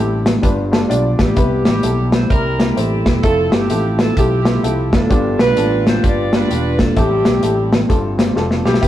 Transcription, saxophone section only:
Already playing: C4 E4 G4
1.21 B3 E4 G4
1.66 B3 E4 G4
2.13 C5
2.30 E4 G4 A#4
2.77 E4 A4
3.23 C4 E4 A4
3.52 C4 E4 G4
4.00 A4
4.17 C4 E4 G4
4.65 G4
4.94 D4 F4 A4
5.40 D4 F4 B4
5.87 C5
6.05 F4 B4 D5
6.35 D4 F4 B4
6.81 A4
6.98 C4 E4 G4
8.65 B3 E4 G4

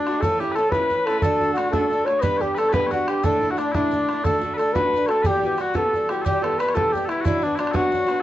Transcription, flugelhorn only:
Already playing: D4
0.22 A4
0.40 G4
0.55 A4
0.71 B4
1.06 A4
1.20 A4
1.54 F#4
1.71 A4
2.05 C#5
2.21 B4
2.41 G4
2.58 A4
2.75 B4
2.93 F#4
3.10 G4
3.26 A4
3.51 F#4
3.59 D4
3.75 D4
4.24 A4
4.57 A4
4.73 B4
5.08 A4
5.27 G4
5.61 F#4
5.77 A4
6.11 G4
6.27 G4
6.45 A4
6.58 B4
6.75 A4
6.94 G4
7.08 E4
7.26 E4
7.43 D4
7.59 D4
7.76 F#4

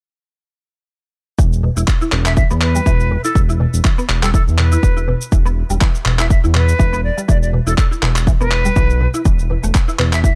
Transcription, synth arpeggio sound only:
1.38 E3
1.63 B2
1.77 E4
2.01 E4
2.12 B2
2.37 E3
2.51 B3
2.75 G3
2.86 E3
3.11 B2
3.25 E4
3.49 E4
3.60 B2
3.85 E3
3.98 B3
4.23 G3
4.34 E3
4.58 B2
4.72 E4
4.97 E4
5.08 B2
5.32 E3
5.46 B3
5.70 G3
5.81 E3
6.06 B2
6.19 E4
6.44 E4
6.55 B2
6.79 E3
6.93 B3
7.17 G3
7.28 E3
7.53 B2
7.67 E4
7.91 E4
8.03 B2
8.27 E3
8.41 B3
8.65 G3
8.76 E3
9.01 B2
9.14 E4
9.25 E3
9.50 B2
9.63 A3
9.88 E4
9.99 B2
10.24 E3

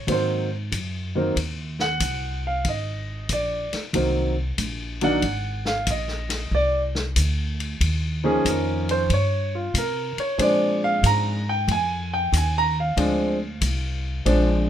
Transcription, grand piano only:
0.07 D#3 F#3 A#3 C4
0.12 C5
1.15 D#3 F#3 A#3 C4
1.81 F#5
2.47 F5
2.68 D#5
3.33 D5
3.94 D#3 F#3 A#3 C4
5.02 D#3 F#3 A#3 D4 F#5
5.67 F5
5.90 D#5
6.55 D5
8.24 D#3 F3 A#3 C#4 G#4
8.49 A#4
8.91 C5
9.14 C#5
9.55 F4
9.78 A#4
10.20 C#5
10.38 F3 G#3 C4 D4
10.42 D5
10.84 F5
11.06 A#5
11.49 G5
11.71 G#5
12.13 G5
12.37 G#5
12.58 A#5
12.80 F5
12.97 F3 G#3 C4 D4
14.25 F3 G#3 C4 D4

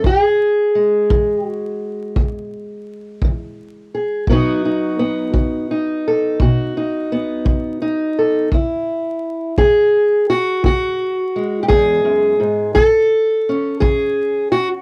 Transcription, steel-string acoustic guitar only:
0.06 E2 G#4
0.75 G#3
1.11 E3
1.47 F#4
2.16 E2
3.24 E3
3.95 G#4
4.30 B2 F#3 B3 D#4 F#4
4.65 D#4
4.99 B3
5.34 F#3
5.71 D#4
6.08 A4
6.41 B2 F#4
6.77 D#4
7.12 B3
7.45 F#3
7.82 D#4
8.19 A4
8.52 E2 E4
9.58 E3 G#4
10.30 F#4
10.65 E2 F#4
11.36 G#3
11.63 G4
11.68 E2 G#4
12.05 F#2
12.40 G#2
12.75 A2 A4
13.49 C#4
13.80 E3 G#4
14.52 F#4

